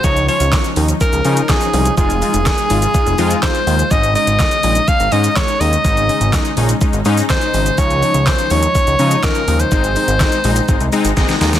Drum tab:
HH |-xox-xox-xox-xox|-xox-xox-xox-xox|-xox-xox-xox-xox|-xox-xox-xox-xox|
SH |xxxxxxxxxxxxxxxx|xxxxxxxxxxxxxxxx|xxxxxxxxxxxxxxxx|xxxxxxxxxxxxxxxx|
CP |----x-------x---|----x-------x---|----x-------x---|----x-------x---|
SD |----o-------o---|----o-------o---|----o-------o---|----o-------o---|
BD |o---o---o---o---|o---o---o---o---|o---o---o---o---|o---o---o---o---|

HH |-xox-xox-xox-xox|-xox-xox-xox-xox|
SH |xxxxxxxxxxxxxxxx|xxxxxxxxxxxxxxxx|
CP |----x-------x---|----x-----------|
SD |----o-------o---|----o-------oooo|
BD |o---o---o---o---|o---o---o---o---|